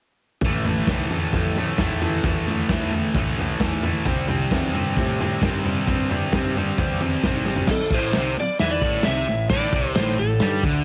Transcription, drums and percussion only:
0.41 kick loud
0.41 floor tom medium
0.65 floor tom medium
0.87 kick loud
0.87 snare loud
0.87 floor tom medium
1.11 floor tom medium
1.33 kick loud
1.33 floor tom medium
1.56 floor tom medium
1.78 kick loud
1.78 snare loud
1.78 floor tom medium
2.02 floor tom medium
2.24 kick loud
2.24 floor tom medium
2.48 floor tom medium
2.69 kick loud
2.69 snare loud
2.69 floor tom medium
2.91 floor tom medium
3.15 kick loud
3.15 floor tom medium
3.39 floor tom medium
3.60 kick loud
3.60 snare loud
3.60 floor tom medium
3.83 floor tom medium
4.05 kick loud
4.05 floor tom medium
4.28 floor tom medium
4.51 kick loud
4.51 snare loud
4.51 floor tom medium
4.75 floor tom medium
4.97 kick loud
4.97 floor tom medium
5.21 floor tom medium
5.42 kick loud
5.42 snare loud
5.42 floor tom medium
5.65 floor tom medium
5.87 kick loud
5.87 floor tom medium
6.11 floor tom medium
6.32 kick loud
6.32 snare loud
6.32 floor tom medium
6.57 floor tom medium
6.78 kick loud
6.78 floor tom medium
7.01 floor tom medium
7.23 kick loud
7.23 snare loud
7.23 floor tom medium
7.45 snare medium
7.56 floor tom medium
7.67 kick loud
7.67 snare loud
7.67 crash loud
7.91 kick loud
8.13 snare loud
8.13 open hi-hat medium
8.59 snare loud
8.59 open hi-hat medium
8.82 kick loud
9.03 snare loud
9.03 open hi-hat medium
9.49 kick loud
9.49 snare loud
9.49 open hi-hat medium
9.73 kick loud
9.95 snare loud
9.95 open hi-hat medium
10.40 snare loud
10.40 open hi-hat medium
10.63 kick medium

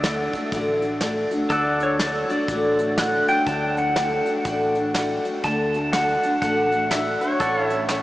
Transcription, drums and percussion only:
0.04 snare loud
0.04 closed hi-hat medium
0.33 kick medium
0.33 closed hi-hat medium
0.52 kick loud
0.52 closed hi-hat medium
0.82 closed hi-hat medium
1.01 snare loud
1.01 closed hi-hat medium
1.31 closed hi-hat medium
1.50 kick loud
1.50 closed hi-hat medium
1.80 closed hi-hat medium
1.99 snare loud
1.99 closed hi-hat medium
2.30 closed hi-hat medium
2.48 kick loud
2.48 closed hi-hat medium
2.79 closed hi-hat medium
2.98 snare loud
2.98 closed hi-hat medium
3.28 closed hi-hat medium
3.46 kick loud
3.46 closed hi-hat medium
3.77 closed hi-hat medium
3.96 snare loud
3.96 closed hi-hat medium
4.26 closed hi-hat medium
4.45 kick loud
4.45 closed hi-hat medium
4.75 closed hi-hat medium
4.94 snare loud
4.94 closed hi-hat medium
5.25 closed hi-hat medium
5.44 kick loud
5.44 closed hi-hat medium
5.74 closed hi-hat medium
5.93 snare loud
5.93 closed hi-hat medium
6.23 closed hi-hat medium
6.42 kick loud
6.42 closed hi-hat medium
6.72 closed hi-hat medium
6.91 snare loud
6.91 closed hi-hat medium
7.21 closed hi-hat medium
7.40 kick loud
7.40 closed hi-hat medium
7.70 closed hi-hat medium
7.89 snare loud
7.89 closed hi-hat medium

